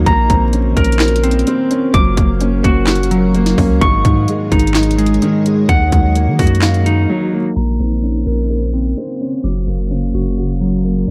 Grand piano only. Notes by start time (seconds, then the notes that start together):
0.06 A#3
0.30 C4
0.53 C#4
1.00 A#4
1.47 C4
1.71 C#4
1.94 F#3
2.17 A#3
2.41 C#4
2.88 F#4
3.35 A#3
3.58 C#4
3.81 G#2
4.06 D#3
4.28 G#3
4.76 D#4
5.22 D#3
5.46 G#3
5.69 D#3
5.92 F#3
6.16 A#3
6.63 F5
7.09 F#3
7.33 A#3
7.56 A#3
7.80 C4
8.03 C#4
8.50 A#4
8.97 C4
9.21 C#4
9.44 F#3
9.67 A#3
9.91 C#4
10.37 F#4
10.85 A#3